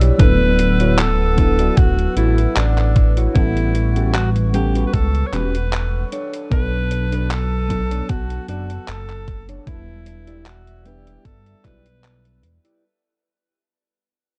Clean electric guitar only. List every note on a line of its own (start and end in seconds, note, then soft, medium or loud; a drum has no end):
0.00 0.20 E4 medium
0.00 0.20 G4 medium
0.00 0.20 C#5 medium
0.00 0.17 E5 medium
0.59 muted clean electric guitar stroke medium
0.80 0.99 E4 medium
0.80 0.99 F#4 medium
0.80 0.99 C#5 medium
1.38 muted clean electric guitar stroke medium
1.59 1.78 E4 medium
1.59 1.78 F#4 medium
1.59 1.78 D5 medium
2.17 2.38 E4 medium
2.17 2.38 F#4 medium
2.17 2.38 A4 loud
2.96 muted clean electric guitar stroke medium
3.17 3.36 E4 medium
3.17 3.36 F#4 medium
3.17 3.36 C#5 medium
3.75 muted clean electric guitar stroke medium
3.96 4.14 C#4 medium
3.96 4.14 F#4 medium
3.96 4.15 G4 medium
3.96 4.14 A4 medium
4.54 muted clean electric guitar stroke medium
4.75 4.93 C#4 medium
4.75 4.93 F#4 medium
4.75 4.94 G4 medium
4.75 4.94 B4 medium
5.33 5.54 C#4 medium
5.33 5.54 F#4 medium
5.33 5.54 G4 medium
5.33 5.54 B4 medium
6.12 6.76 D4 medium
6.12 6.76 A4 medium
6.12 6.76 C#5 loud
6.91 muted clean electric guitar stroke medium
7.12 7.30 D4 medium
7.12 7.30 A4 medium
7.12 7.30 B4 medium
7.70 muted clean electric guitar stroke medium
7.91 8.09 D4 medium
7.91 8.09 A4 medium
7.91 8.09 C#5 medium
8.48 8.70 D4 medium
8.48 8.70 A4 medium
8.48 8.70 D5 loud
9.27 muted clean electric guitar stroke medium
9.49 9.67 D4 medium
9.49 9.67 A4 medium
9.49 9.67 C#5 medium
10.06 muted clean electric guitar stroke medium
10.27 10.46 E4 medium
10.27 10.46 G4 medium
10.27 10.46 D5 medium
10.85 muted clean electric guitar stroke medium
11.06 11.25 E4 medium
11.06 11.25 G4 medium
11.06 11.25 D5 medium
11.64 11.85 E4 medium
11.64 11.85 G4 medium
11.64 11.85 D5 medium
12.43 muted clean electric guitar stroke medium
12.64 12.83 E4 medium
12.64 12.83 G4 medium
12.64 12.83 D5 medium